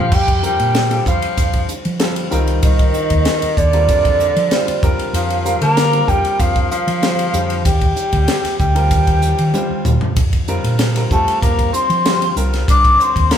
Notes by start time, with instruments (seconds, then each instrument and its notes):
Already playing: fingered electric bass F2, tenor saxophone F3, grand piano G4, flute F5
0.12 fingered electric bass F2, tenor saxophone G3, flute G5, kick, crash
0.28 kick, ride
0.43 grand piano D3 G3 C4 F4 A#4, tenor saxophone G3, flute G5, hi-hat pedal
0.60 fingered electric bass A#2, ride
0.75 snare, hi-hat pedal, ride
0.91 grand piano D3 G3 C4 F4 A4, ride
1.06 fingered electric bass F2, grand piano D3 G3 C4 F4 C5, tenor saxophone F3, flute F5, kick, hi-hat pedal
1.22 ride
1.37 fingered electric bass F2, kick, hi-hat pedal, ride
1.53 kick, ride
1.69 hi-hat pedal
1.85 fingered electric bass F3, ride
1.99 grand piano D3 G3 C4 F4 A4, snare, hi-hat pedal, ride
2.16 ride
2.31 fingered electric bass C2, grand piano D#3 G3 C4 F4 A#4, hi-hat pedal
2.47 ride
2.63 fingered electric bass C2, tenor saxophone D#3, flute D#5, kick, hi-hat pedal, ride
2.79 kick, ride
2.94 hi-hat pedal
3.10 fingered electric bass D#2, kick, ride
3.25 snare, hi-hat pedal, ride
3.42 muted fingered electric bass stroke, ride
3.57 fingered electric bass D#2, tenor saxophone D3, flute D5, kick, hi-hat pedal
3.73 grand piano D3 G3 C4 F4 A#4, ride
3.89 fingered electric bass F2, kick, hi-hat pedal, ride
4.05 kick, ride
4.20 hi-hat pedal
4.36 fingered electric bass F3, ride
4.51 grand piano D3 G3 C4 F4 C5, snare, hi-hat pedal, ride
4.68 muted fingered electric bass stroke, ride
4.83 fingered electric bass F2, grand piano D3 G3 C4 F4 A#4, kick, hi-hat pedal
4.99 muted fingered electric bass stroke, ride
5.13 fingered electric bass F2, tenor saxophone F3, flute F5, hi-hat pedal, ride
5.30 ride
5.45 grand piano D3 G3 C4 F4 A#4, hi-hat pedal
5.62 fingered electric bass D3, tenor saxophone A#3, flute A#5, ride
5.77 snare, hi-hat pedal, ride
5.93 grand piano D3 G3 C4 F4 A#4, ride
6.07 fingered electric bass F2, grand piano D3 G3 C4 F4 A#4, tenor saxophone G3, flute G5, kick, hi-hat pedal
6.25 ride
6.39 fingered electric bass F2, tenor saxophone F3, flute F5, kick, hi-hat pedal, ride
6.56 kick, ride
6.70 tenor saxophone F3, flute F5, hi-hat pedal
6.87 fingered electric bass F3, ride
7.02 grand piano D3 G3 C4 F4 C5, snare, hi-hat pedal, ride
7.19 ride
7.34 fingered electric bass F2, grand piano D3 G3 C4 F4 C5, hi-hat pedal
7.50 ride
7.64 fingered electric bass D#2, tenor saxophone G3, flute G5, kick, hi-hat pedal, ride
7.81 kick, ride
7.96 hi-hat pedal
8.13 fingered electric bass D2, kick, ride
8.28 snare, hi-hat pedal, ride
8.44 muted fingered electric bass stroke, snare, ride
8.58 fingered electric bass D2, tenor saxophone G3, flute G5, kick, hi-hat pedal
8.75 grand piano D3 G3 C4 F4 A#4, ride
8.91 fingered electric bass D#2, kick, hi-hat pedal, ride
9.07 kick, ride
9.22 hi-hat pedal
9.38 fingered electric bass D#3, ride
9.54 grand piano D3 G3 C4 F4 C5, hi-hat pedal, high tom
9.70 muted fingered electric bass stroke
9.85 fingered electric bass D#2, hi-hat pedal, mid tom
10.01 floor tom
10.16 fingered electric bass F2, kick, hi-hat pedal, ride
10.33 kick, ride
10.48 grand piano D3 G3 C4 F4 A#4, hi-hat pedal
10.64 fingered electric bass A#2, ride
10.79 snare, hi-hat pedal, ride
10.96 grand piano D3 G3 C4 F4 A#4, snare, ride
11.11 fingered electric bass F2, grand piano D3 G3 C4 F4 G4, tenor saxophone A3, flute A5, kick, hi-hat pedal
11.28 ride
11.42 fingered electric bass F2, tenor saxophone A#3, flute A#5, kick, hi-hat pedal, ride
11.59 kick, ride
11.73 tenor saxophone C4, flute C6, hi-hat pedal
11.90 fingered electric bass F3, ride
12.05 grand piano D3 G3 C4 F4 G4, snare, hi-hat pedal, ride
12.22 ride
12.36 fingered electric bass C2, grand piano D3 G3 C4 F4 A#4, hi-hat pedal
12.54 snare, ride
12.68 fingered electric bass C2, tenor saxophone D4, flute D6, kick, hi-hat pedal, ride
12.85 kick, ride
13.00 tenor saxophone C4, flute C6, hi-hat pedal
13.16 fingered electric bass D#2, kick, ride
13.31 tenor saxophone A#3, flute A#5, snare, hi-hat pedal, ride